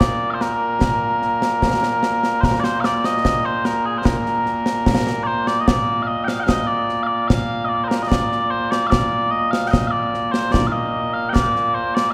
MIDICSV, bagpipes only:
0, 0, Header, 1, 2, 480
1, 0, Start_track
1, 0, Key_signature, -2, "major"
1, 0, Tempo, 810811
1, 481, Time_signature, 2, 2, 24, 8
1, 7185, End_track
2, 0, Start_track
2, 0, Title_t, "Bagpipes"
2, 0, Program_c, 0, 109
2, 0, Note_on_c, 0, 46, 89
2, 0, Note_on_c, 0, 58, 89
2, 0, Note_on_c, 0, 74, 90
2, 179, Note_off_c, 0, 74, 0
2, 179, Note_on_c, 0, 77, 69
2, 201, Note_off_c, 0, 77, 0
2, 201, Note_on_c, 0, 72, 69
2, 244, Note_off_c, 0, 72, 0
2, 244, Note_on_c, 0, 70, 91
2, 1425, Note_off_c, 0, 70, 0
2, 1425, Note_on_c, 0, 72, 96
2, 1446, Note_off_c, 0, 72, 0
2, 1446, Note_on_c, 0, 70, 96
2, 1538, Note_off_c, 0, 70, 0
2, 1538, Note_on_c, 0, 74, 92
2, 1564, Note_off_c, 0, 74, 0
2, 1564, Note_on_c, 0, 72, 92
2, 1661, Note_off_c, 0, 72, 0
2, 1661, Note_on_c, 0, 77, 95
2, 1685, Note_off_c, 0, 77, 0
2, 1685, Note_on_c, 0, 74, 95
2, 1805, Note_off_c, 0, 74, 0
2, 1805, Note_on_c, 0, 75, 105
2, 2044, Note_off_c, 0, 75, 0
2, 2044, Note_on_c, 0, 72, 94
2, 2162, Note_off_c, 0, 72, 0
2, 2162, Note_on_c, 0, 70, 83
2, 2284, Note_off_c, 0, 70, 0
2, 2284, Note_on_c, 0, 68, 84
2, 2357, Note_off_c, 0, 68, 0
2, 2357, Note_on_c, 0, 72, 59
2, 2400, Note_off_c, 0, 72, 0
2, 2400, Note_on_c, 0, 70, 83
2, 3099, Note_off_c, 0, 70, 0
2, 3099, Note_on_c, 0, 74, 96
2, 3119, Note_off_c, 0, 74, 0
2, 3119, Note_on_c, 0, 72, 96
2, 3240, Note_off_c, 0, 72, 0
2, 3240, Note_on_c, 0, 74, 98
2, 3316, Note_off_c, 0, 74, 0
2, 3316, Note_on_c, 0, 75, 76
2, 3355, Note_off_c, 0, 75, 0
2, 3355, Note_on_c, 0, 74, 93
2, 3567, Note_off_c, 0, 74, 0
2, 3567, Note_on_c, 0, 77, 73
2, 3594, Note_off_c, 0, 77, 0
2, 3594, Note_on_c, 0, 75, 93
2, 3695, Note_off_c, 0, 75, 0
2, 3695, Note_on_c, 0, 79, 94
2, 3716, Note_off_c, 0, 79, 0
2, 3716, Note_on_c, 0, 77, 94
2, 3787, Note_off_c, 0, 77, 0
2, 3787, Note_on_c, 0, 79, 76
2, 3809, Note_off_c, 0, 79, 0
2, 3809, Note_on_c, 0, 77, 76
2, 3838, Note_off_c, 0, 77, 0
2, 3838, Note_on_c, 0, 75, 99
2, 3947, Note_off_c, 0, 75, 0
2, 3947, Note_on_c, 0, 74, 100
2, 4162, Note_off_c, 0, 74, 0
2, 4162, Note_on_c, 0, 77, 85
2, 4183, Note_off_c, 0, 77, 0
2, 4183, Note_on_c, 0, 74, 85
2, 4308, Note_off_c, 0, 74, 0
2, 4308, Note_on_c, 0, 77, 108
2, 4528, Note_off_c, 0, 77, 0
2, 4528, Note_on_c, 0, 75, 72
2, 4550, Note_off_c, 0, 75, 0
2, 4550, Note_on_c, 0, 74, 92
2, 4641, Note_off_c, 0, 74, 0
2, 4641, Note_on_c, 0, 72, 61
2, 4664, Note_off_c, 0, 72, 0
2, 4664, Note_on_c, 0, 70, 80
2, 4750, Note_off_c, 0, 70, 0
2, 4750, Note_on_c, 0, 75, 75
2, 4782, Note_off_c, 0, 75, 0
2, 4782, Note_on_c, 0, 74, 96
2, 5034, Note_off_c, 0, 74, 0
2, 5034, Note_on_c, 0, 72, 98
2, 5156, Note_off_c, 0, 72, 0
2, 5156, Note_on_c, 0, 74, 96
2, 5249, Note_off_c, 0, 74, 0
2, 5249, Note_on_c, 0, 77, 100
2, 5270, Note_off_c, 0, 77, 0
2, 5270, Note_on_c, 0, 74, 100
2, 5509, Note_off_c, 0, 74, 0
2, 5509, Note_on_c, 0, 75, 101
2, 5629, Note_off_c, 0, 75, 0
2, 5629, Note_on_c, 0, 77, 98
2, 5726, Note_off_c, 0, 77, 0
2, 5726, Note_on_c, 0, 79, 91
2, 5746, Note_off_c, 0, 79, 0
2, 5746, Note_on_c, 0, 75, 91
2, 5845, Note_off_c, 0, 75, 0
2, 5845, Note_on_c, 0, 77, 94
2, 5865, Note_off_c, 0, 77, 0
2, 5865, Note_on_c, 0, 74, 94
2, 6107, Note_off_c, 0, 74, 0
2, 6107, Note_on_c, 0, 72, 85
2, 6227, Note_off_c, 0, 72, 0
2, 6227, Note_on_c, 0, 74, 101
2, 6317, Note_off_c, 0, 74, 0
2, 6317, Note_on_c, 0, 77, 65
2, 6347, Note_off_c, 0, 77, 0
2, 6347, Note_on_c, 0, 75, 92
2, 6592, Note_off_c, 0, 75, 0
2, 6592, Note_on_c, 0, 77, 100
2, 6685, Note_off_c, 0, 77, 0
2, 6685, Note_on_c, 0, 79, 83
2, 6709, Note_off_c, 0, 79, 0
2, 6709, Note_on_c, 0, 74, 83
2, 6953, Note_off_c, 0, 74, 0
2, 6953, Note_on_c, 0, 72, 82
2, 7073, Note_off_c, 0, 72, 0
2, 7073, Note_on_c, 0, 74, 90
2, 7167, Note_off_c, 0, 74, 0
2, 7167, Note_on_c, 0, 77, 91
2, 7185, Note_off_c, 0, 46, 0
2, 7185, Note_off_c, 0, 58, 0
2, 7185, Note_off_c, 0, 77, 0
2, 7185, End_track
0, 0, End_of_file